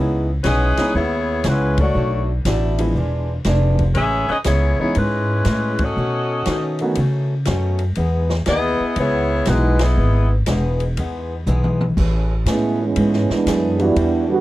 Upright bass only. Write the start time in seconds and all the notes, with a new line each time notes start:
Already playing: C#2
0.44 B1
0.78 muted upright bass stroke
0.94 D#2
1.44 C#2
1.95 B1
2.45 A1
2.95 E1
3.45 F1
3.95 A1
4.29 muted upright bass stroke
4.46 C#2
4.79 muted upright bass stroke
4.96 G#2
5.46 A2
5.96 B2
6.47 D#3
6.97 C#3
7.47 F#2
7.97 E2
8.47 D#2
8.80 muted upright bass stroke
8.96 C#2
9.47 B1
9.98 G#1
10.48 E1
10.98 E2
11.46 B1
11.97 A1
12.46 A2
12.97 G#2
13.30 muted upright bass stroke
13.46 F#2
13.96 E2